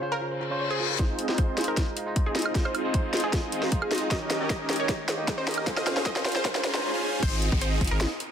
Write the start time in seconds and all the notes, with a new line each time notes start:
Already playing: F4 C5
0.00 C#3 C#4 F4 C5
0.12 A#4 F5
0.21 F4, reverse cymbal
0.31 C5
0.41 F4
0.50 C#3 C#4 F4 C5 C#5
0.60 C#5
0.70 G#4 C5
0.79 C#3 C#4 F4 A#4
0.90 F4
0.98 G#3 C4 D#4 F4 G#4 C5 D#5, kick, snare, closed hi-hat, riser
1.19 closed hi-hat
1.28 G#3 C4 D#4 F4 G#4 C5 D#5, snare
1.38 C5, kick, closed hi-hat
1.57 G#3 C4 D#4 F4 G#4 C5 D#5, snare, closed hi-hat
1.61 closed hi-hat
1.64 C4 D#4 F4 G#4 A#4 D#5, closed hi-hat
1.77 kick, snare, closed hi-hat
1.96 G#3 D#4 F4 F5, closed hi-hat
2.06 G#3 D#4 F4 D#5
2.16 kick, closed hi-hat
2.26 C4 D#4 F4 G#4 D#5
2.35 G#3 D#4 F4 D#5, snare, closed hi-hat
2.39 closed hi-hat
2.42 closed hi-hat, high woodblock
2.54 G#3 D#4 F4 G#4 C5, kick, snare, closed hi-hat
2.65 C4 D#4 F4 G#4 C5 D#5, high woodblock
2.75 closed hi-hat, high woodblock
2.83 G#3 C4 D#4 F4 G#4 C5 D#5
2.94 C5, kick, closed hi-hat
3.12 G#3 C4 D#4 F4 G#4 C5 D#5, snare, closed hi-hat
3.17 closed hi-hat
3.20 C4 D#4 F4 G#4 D#5, closed hi-hat
3.33 kick, snare, closed hi-hat
3.51 G#3 D#4 F4 F5, closed hi-hat
3.62 G#3 D#4 F4 D#5, snare
3.72 kick, closed hi-hat
3.82 G#4, high woodblock
3.91 G#3 D#4 F4 D#5, snare, closed hi-hat
3.95 closed hi-hat
3.98 closed hi-hat
4.10 D#3 C#4 D#4 G4 A#4 C#5 D#5, kick, snare, closed hi-hat
4.30 snare, closed hi-hat
4.40 D#3 C#4 D#4 G4 A#4 C#5 D#5
4.50 D#5, kick, snare, closed hi-hat
4.68 D#3 C#4 D#4 G4 A#4 C#5 D#5, snare, closed hi-hat
4.73 closed hi-hat
4.76 C#4 D#4 G4 A#4 C#5 D#5, closed hi-hat
4.89 kick, snare, closed hi-hat
5.07 D#3 D#4 G4 F5, snare, closed hi-hat
5.18 D#3 D#4 G4 D#5
5.28 kick, snare, closed hi-hat
5.38 C#4 D#4 G4 A#4 C5 D#5
5.46 D#3 D#4 G4 D#5, snare, closed hi-hat
5.51 closed hi-hat
5.54 closed hi-hat, high woodblock
5.66 C#3 C#4 F4 G#4 C5 F5, kick, snare, closed hi-hat
5.77 C#4 F4 G#4 C5 D#5 F5, snare, high woodblock
5.87 snare, closed hi-hat, high woodblock
5.95 C#3 C#4 F4 G#4 C5 F5, snare
6.06 D#5, kick, snare, closed hi-hat
6.16 snare
6.24 C#3 C#4 F4 G#4 C5 F5, snare, closed hi-hat
6.29 closed hi-hat
6.32 C#4 F4 G#4 C5 F5, snare, closed hi-hat
6.45 kick, snare, closed hi-hat, swell
6.55 snare
6.64 C#4 F4 G#4 C5 A#5, snare, closed hi-hat
6.73 C#3 C#4 F4 C5, snare
6.94 C#4 F4 G#4 C5 G#5
7.23 G#1 C4 D#4 G#4 C5 D#5, kick, closed hi-hat, crash, downlifter
7.42 closed hi-hat
7.52 G#1 C4 D#4 F4 G#4 D#5, kick
7.61 C5, closed hi-hat
7.81 G#1 C4 D#4 F4 G#4, kick, closed hi-hat
7.84 closed hi-hat
7.87 G#1 C4 D#4 F4 G#4 A#4 D#5, closed hi-hat
8.01 snare, closed hi-hat
8.20 closed hi-hat